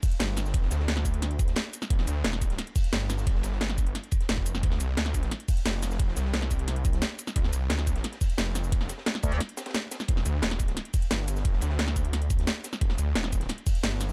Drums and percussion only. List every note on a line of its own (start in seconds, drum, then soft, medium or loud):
0.03 kick loud
0.03 closed hi-hat medium
0.03 open hi-hat medium
0.03 shaker medium
0.12 closed hi-hat soft
0.20 snare loud
0.20 closed hi-hat loud
0.20 ride medium
0.20 shaker soft
0.36 snare medium
0.36 closed hi-hat medium
0.36 ride medium
0.36 shaker medium
0.46 snare soft
0.46 shaker soft
0.54 kick loud
0.54 closed hi-hat loud
0.54 ride medium
0.62 snare soft
0.71 snare medium
0.71 closed hi-hat medium
0.71 ride medium
0.71 shaker medium
0.80 snare medium
0.88 snare loud
0.88 closed hi-hat loud
0.88 ride medium
0.97 snare medium
0.97 closed hi-hat soft
1.05 kick medium
1.05 closed hi-hat medium
1.05 ride medium
1.05 shaker medium
1.14 closed hi-hat soft
1.22 snare medium
1.22 closed hi-hat loud
1.22 ride medium
1.31 closed hi-hat soft
1.39 kick loud
1.39 closed hi-hat medium
1.39 ride medium
1.39 shaker medium
1.48 snare soft
1.48 closed hi-hat soft
1.56 snare loud
1.56 closed hi-hat medium
1.56 ride loud
1.56 shaker soft
1.73 closed hi-hat medium
1.73 ride medium
1.73 shaker medium
1.82 snare medium
1.82 shaker soft
1.90 kick loud
1.90 closed hi-hat loud
1.90 ride medium
1.99 snare medium
1.99 snare soft
2.07 closed hi-hat medium
2.07 ride medium
2.07 shaker medium
2.24 snare loud
2.24 closed hi-hat medium
2.24 ride medium
2.33 snare soft
2.33 snare medium
2.33 closed hi-hat soft
2.42 kick medium
2.42 closed hi-hat medium
2.42 ride medium
2.42 shaker medium
2.50 snare soft
2.50 closed hi-hat soft
2.58 snare soft
2.58 closed hi-hat medium
2.58 ride loud
2.67 closed hi-hat soft
2.75 kick loud
2.75 closed hi-hat medium
2.75 open hi-hat medium
2.75 shaker medium
2.84 closed hi-hat soft
2.93 snare loud
2.93 closed hi-hat medium
2.93 ride medium
2.93 shaker soft
3.09 snare medium
3.09 closed hi-hat medium
3.09 ride medium
3.09 shaker medium
3.18 snare soft
3.18 shaker soft
3.27 kick loud
3.27 closed hi-hat medium
3.27 ride loud
3.35 snare soft
3.43 snare medium
3.43 closed hi-hat medium
3.43 ride medium
3.43 shaker medium
3.52 snare soft
3.61 snare loud
3.61 closed hi-hat medium
3.61 ride medium
3.69 snare medium
3.69 closed hi-hat soft
3.78 kick medium
3.78 closed hi-hat medium
3.78 ride medium
3.78 shaker medium
3.87 closed hi-hat soft
3.95 snare soft
3.95 closed hi-hat medium
3.95 ride medium
4.04 closed hi-hat soft
4.11 kick loud
4.11 closed hi-hat medium
4.11 ride medium
4.11 shaker medium
4.21 snare soft
4.21 closed hi-hat soft
4.29 snare loud
4.29 closed hi-hat medium
4.29 ride medium
4.29 shaker soft
4.38 kick medium
4.46 closed hi-hat medium
4.46 ride medium
4.46 shaker medium
4.55 snare soft
4.55 shaker soft
4.63 kick loud
4.63 closed hi-hat loud
4.63 ride medium
4.71 snare medium
4.71 snare soft
4.80 closed hi-hat medium
4.80 ride medium
4.80 shaker medium
4.97 snare loud
4.97 closed hi-hat medium
4.97 ride medium
5.05 snare soft
5.05 snare medium
5.05 closed hi-hat soft
5.14 kick medium
5.14 closed hi-hat medium
5.14 ride medium
5.14 shaker medium
5.23 snare soft
5.23 closed hi-hat soft
5.31 snare soft
5.31 closed hi-hat medium
5.31 ride medium
5.40 closed hi-hat soft
5.48 kick loud
5.48 closed hi-hat medium
5.48 open hi-hat medium
5.48 shaker medium
5.57 closed hi-hat soft
5.65 snare loud
5.65 closed hi-hat medium
5.65 ride medium
5.65 shaker soft
5.83 snare soft
5.83 closed hi-hat medium
5.83 ride medium
5.83 shaker medium
5.91 snare medium
5.91 shaker soft
5.99 kick loud
5.99 closed hi-hat medium
5.99 ride medium
6.08 snare soft
6.16 snare medium
6.16 closed hi-hat medium
6.16 ride medium
6.16 shaker medium
6.25 snare soft
6.33 snare loud
6.33 closed hi-hat loud
6.33 ride medium
6.42 snare medium
6.42 closed hi-hat soft
6.51 kick medium
6.51 closed hi-hat medium
6.51 ride medium
6.51 shaker medium
6.59 closed hi-hat soft
6.68 snare soft
6.68 closed hi-hat medium
6.68 ride medium
6.76 closed hi-hat soft
6.85 kick loud
6.85 closed hi-hat medium
6.85 ride medium
6.85 shaker medium
6.93 snare soft
6.93 closed hi-hat soft
7.02 snare loud
7.02 closed hi-hat medium
7.02 ride medium
7.02 shaker soft
7.19 closed hi-hat medium
7.19 ride medium
7.19 shaker medium
7.27 snare soft
7.27 shaker soft
7.36 kick loud
7.36 closed hi-hat loud
7.36 ride medium
7.44 snare medium
7.44 snare soft
7.53 closed hi-hat medium
7.53 ride medium
7.53 shaker medium
7.70 snare loud
7.70 closed hi-hat loud
7.70 ride medium
7.79 snare soft
7.79 snare medium
7.79 closed hi-hat soft
7.87 kick medium
7.87 closed hi-hat medium
7.87 ride medium
7.87 shaker medium
7.96 snare soft
7.96 closed hi-hat soft
8.04 snare soft
8.04 closed hi-hat loud
8.04 ride medium
8.12 snare soft
8.12 closed hi-hat soft
8.21 kick loud
8.21 closed hi-hat medium
8.21 open hi-hat medium
8.21 shaker medium
8.30 closed hi-hat soft
8.38 snare loud
8.38 closed hi-hat medium
8.38 ride medium
8.38 shaker soft
8.55 snare soft
8.55 closed hi-hat medium
8.55 ride medium
8.55 shaker medium
8.64 shaker soft
8.72 kick loud
8.72 closed hi-hat loud
8.72 ride medium
8.81 snare soft
8.89 snare medium
8.89 closed hi-hat medium
8.89 ride medium
8.89 shaker medium
8.98 snare medium
9.06 snare loud
9.06 closed hi-hat loud
9.06 ride medium
9.15 snare medium
9.15 closed hi-hat soft
9.23 kick medium
9.23 closed hi-hat medium
9.23 ride medium
9.23 shaker medium
9.32 closed hi-hat soft
9.40 snare soft
9.40 closed hi-hat loud
9.40 ride loud
9.49 closed hi-hat soft
9.57 snare loud
9.57 closed hi-hat medium
9.57 ride medium
9.57 shaker medium
9.66 snare loud
9.66 closed hi-hat soft
9.66 ride medium
9.70 snare medium
9.70 ride medium
9.74 snare loud
9.74 closed hi-hat loud
9.74 ride medium
9.74 shaker soft
9.91 snare medium
9.91 closed hi-hat medium
9.91 ride medium
9.91 shaker medium
10.00 snare soft
10.00 snare medium
10.00 shaker soft
10.08 kick loud
10.08 closed hi-hat loud
10.08 ride medium
10.16 snare medium
10.16 snare soft
10.26 closed hi-hat medium
10.26 ride medium
10.26 shaker medium
10.42 snare loud
10.42 closed hi-hat loud
10.42 ride medium
10.51 snare soft
10.51 snare medium
10.51 closed hi-hat soft
10.59 kick medium
10.59 closed hi-hat medium
10.59 ride medium
10.59 shaker medium
10.68 snare soft
10.68 closed hi-hat soft
10.77 snare medium
10.77 closed hi-hat loud
10.77 ride medium
10.85 closed hi-hat soft
10.94 kick loud
10.94 closed hi-hat medium
10.94 open hi-hat medium
10.94 shaker medium
11.02 closed hi-hat soft
11.11 snare loud
11.11 closed hi-hat loud
11.11 ride medium
11.11 shaker soft
11.28 closed hi-hat medium
11.28 ride medium
11.28 shaker medium
11.36 snare soft
11.36 shaker soft
11.45 kick loud
11.45 closed hi-hat loud
11.45 ride medium
11.53 snare soft
11.61 snare medium
11.61 closed hi-hat medium
11.61 ride medium
11.61 shaker medium
11.70 snare medium
11.79 snare loud
11.79 closed hi-hat loud
11.79 ride medium
11.88 snare medium
11.88 closed hi-hat soft
11.96 kick medium
11.96 closed hi-hat medium
11.96 ride medium
11.96 shaker medium
12.05 closed hi-hat soft
12.13 snare medium
12.13 closed hi-hat medium
12.13 ride loud
12.22 closed hi-hat soft
12.30 kick loud
12.30 closed hi-hat medium
12.30 ride medium
12.30 shaker medium
12.39 snare soft
12.39 closed hi-hat soft
12.47 snare loud
12.47 closed hi-hat medium
12.47 ride medium
12.47 shaker soft
12.64 snare medium
12.64 closed hi-hat medium
12.64 ride medium
12.64 shaker medium
12.73 snare soft
12.73 shaker soft
12.81 kick loud
12.81 closed hi-hat loud
12.81 ride medium
12.89 snare medium
12.89 snare soft
12.98 closed hi-hat medium
12.98 ride medium
12.98 shaker medium
13.15 snare loud
13.15 closed hi-hat loud
13.15 ride medium
13.24 snare soft
13.24 snare medium
13.24 closed hi-hat soft
13.32 kick medium
13.32 closed hi-hat medium
13.32 ride medium
13.32 shaker medium
13.41 snare soft
13.41 closed hi-hat soft
13.49 snare soft
13.49 closed hi-hat medium
13.49 ride medium
13.58 closed hi-hat soft
13.67 kick loud
13.67 closed hi-hat medium
13.67 open hi-hat medium
13.67 shaker medium
13.75 closed hi-hat soft
13.83 snare loud
13.83 closed hi-hat medium
13.83 ride loud
13.83 shaker soft
14.00 snare soft
14.00 closed hi-hat medium
14.00 ride medium
14.00 shaker medium
14.09 shaker soft